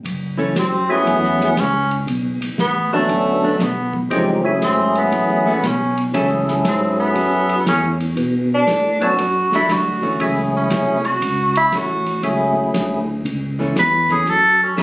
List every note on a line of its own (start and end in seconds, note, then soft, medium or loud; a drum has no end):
0.05 0.54 F#1 medium
0.05 kick soft
0.05 ride medium
0.37 0.53 E3 medium
0.37 0.54 A3 medium
0.37 0.54 C#4 medium
0.56 1.05 F#2 medium
0.56 0.93 C4 medium
0.56 kick soft
0.56 snare medium
0.56 hi-hat pedal medium
0.56 ride medium
0.89 1.53 F#3 medium
0.89 1.54 A3 medium
0.89 1.61 B3 medium
0.89 1.54 C#4 medium
0.89 1.54 E4 medium
0.89 1.54 G#4 medium
1.06 1.55 E2 medium
1.06 kick soft
1.06 ride medium
1.23 snare soft
1.40 snare soft
1.57 2.06 C#2 medium
1.57 1.92 C#4 medium
1.57 kick soft
1.57 snare medium
1.57 hi-hat pedal soft
1.57 ride medium
1.91 ride soft
2.07 2.39 B1 medium
2.07 kick soft
2.07 ride medium
2.41 2.50 B1 soft
2.41 ride medium
2.58 3.08 A1 medium
2.58 2.91 B3 medium
2.58 kick soft
2.58 snare medium
2.58 hi-hat pedal soft
2.92 3.57 F#3 medium
2.92 3.08 F#3 medium
2.92 3.65 A3 medium
2.92 3.08 A3 medium
2.92 3.57 B3 medium
2.92 3.57 C#4 medium
2.92 3.57 D4 medium
2.92 3.09 D4 medium
2.92 3.57 A4 medium
3.08 3.58 D2 medium
3.08 kick soft
3.08 ride medium
3.43 3.58 F#3 medium
3.43 3.59 A3 medium
3.43 3.59 D4 medium
3.60 4.09 B1 medium
3.60 3.96 B3 medium
3.60 kick soft
3.60 snare medium
3.60 hi-hat pedal medium
3.60 ride medium
3.93 kick medium
4.10 4.60 F#1 medium
4.10 4.42 E3 medium
4.10 4.41 F3 medium
4.10 4.41 G#3 medium
4.10 4.42 A3 medium
4.10 4.41 C4 medium
4.10 4.42 C#4 medium
4.10 4.41 D#4 medium
4.10 4.41 G4 medium
4.10 kick soft
4.10 ride medium
4.44 5.53 F#3 medium
4.44 5.53 A3 medium
4.44 5.53 C#4 medium
4.44 5.53 E4 medium
4.44 5.54 G#4 medium
4.61 5.11 G#1 medium
4.61 4.94 C4 medium
4.61 kick soft
4.61 snare medium
4.61 hi-hat pedal medium
4.61 ride medium
4.95 5.68 B3 medium
4.95 ride soft
5.12 5.61 A1 medium
5.12 kick soft
5.12 ride medium
5.46 5.61 E3 medium
5.46 5.62 A3 medium
5.46 5.62 C#4 medium
5.63 6.12 B1 medium
5.63 5.98 C#4 medium
5.63 kick soft
5.63 snare medium
5.63 hi-hat pedal medium
5.63 ride medium
5.97 ride soft
6.14 6.63 C#2 medium
6.14 6.44 E3 medium
6.14 7.56 F#3 medium
6.14 6.45 A3 medium
6.14 7.56 C#4 medium
6.14 6.45 C#4 medium
6.14 7.56 E4 medium
6.14 7.56 G#4 medium
6.14 7.56 A4 medium
6.14 kick soft
6.14 ride medium
6.48 snare soft
6.65 7.14 G#2 medium
6.65 6.98 C4 medium
6.65 kick soft
6.65 snare medium
6.65 hi-hat pedal medium
6.65 ride medium
7.00 7.63 B3 medium
7.15 7.65 F#2 medium
7.15 kick soft
7.15 ride medium
7.49 ride soft
7.66 8.15 E2 medium
7.66 7.96 E3 medium
7.66 7.97 A3 medium
7.66 7.97 C#4 medium
7.66 7.88 C#4 medium
7.66 kick soft
7.66 snare medium
7.66 hi-hat pedal medium
7.66 ride medium
8.00 ride soft
8.17 8.66 B2 medium
8.17 kick soft
8.17 ride medium
8.54 9.05 D4 loud
8.67 8.99 A2 medium
8.67 kick soft
8.67 snare medium
8.67 hi-hat pedal medium
8.67 ride medium
9.01 9.09 A2 soft
9.01 9.16 F#3 medium
9.01 9.16 B3 medium
9.01 9.17 C#4 medium
9.01 9.17 D4 medium
9.01 9.53 F#4 loud
9.01 9.17 A4 medium
9.01 ride soft
9.18 9.50 F#2 medium
9.18 kick soft
9.18 ride medium
9.52 9.61 F#2 soft
9.52 10.00 F#3 medium
9.52 10.00 A3 medium
9.52 10.01 D4 medium
9.52 9.73 E4 medium
9.52 snare soft
9.69 10.01 D2 medium
9.69 10.21 F#4 medium
9.69 kick soft
9.69 snare medium
9.69 hi-hat pedal soft
9.69 ride medium
10.02 10.11 D2 soft
10.02 10.67 E3 medium
10.02 10.67 A3 medium
10.02 10.67 C#4 medium
10.19 10.69 C#2 medium
10.19 10.98 F#3 medium
10.19 10.98 A3 medium
10.19 10.98 C#4 medium
10.19 10.98 E4 medium
10.19 10.98 G#4 medium
10.19 kick soft
10.19 ride medium
10.57 11.07 C#4 medium
10.70 11.20 C2 medium
10.70 kick soft
10.70 snare medium
10.70 hi-hat pedal medium
10.70 ride medium
11.05 11.56 F#4 loud
11.05 ride soft
11.21 11.71 C#2 medium
11.21 kick soft
11.21 ride medium
11.56 11.77 E4 loud
11.56 ride soft
11.72 12.21 A1 medium
11.72 12.03 E3 medium
11.72 12.03 A3 medium
11.72 12.04 C#4 medium
11.72 12.25 F#4 loud
11.72 kick soft
11.72 snare medium
11.72 hi-hat pedal medium
11.72 ride medium
12.06 ride soft
12.23 12.54 C#2 medium
12.23 13.01 F#3 medium
12.23 13.01 A3 medium
12.23 13.01 C#4 medium
12.23 13.01 E4 medium
12.23 13.01 G#4 medium
12.23 kick soft
12.23 ride medium
12.56 12.65 C#2 soft
12.74 13.23 D2 medium
12.74 kick soft
12.74 snare medium
12.74 hi-hat pedal medium
12.74 ride medium
13.25 13.74 C#2 medium
13.25 kick soft
13.25 ride medium
13.59 14.06 E3 medium
13.59 14.07 A3 medium
13.59 14.07 C#4 medium
13.76 14.25 E2 medium
13.76 14.09 B4 medium
13.76 kick soft
13.76 snare medium
13.76 hi-hat pedal medium
13.76 ride medium
14.09 14.24 E3 medium
14.09 14.25 A3 medium
14.09 14.25 C#4 medium
14.09 14.31 G#4 medium
14.09 kick medium
14.09 ride soft
14.27 14.76 F#2 medium
14.27 14.61 A4 loud
14.27 kick soft
14.27 ride medium
14.63 14.81 C#4 medium
14.77 14.83 G#2 medium
14.77 14.83 E3 medium
14.77 14.83 F#3 medium
14.77 14.83 C#4 medium
14.77 14.83 E4 medium
14.77 14.83 G#4 medium
14.77 14.83 A4 medium
14.77 kick soft
14.77 snare medium
14.77 hi-hat pedal medium
14.77 ride medium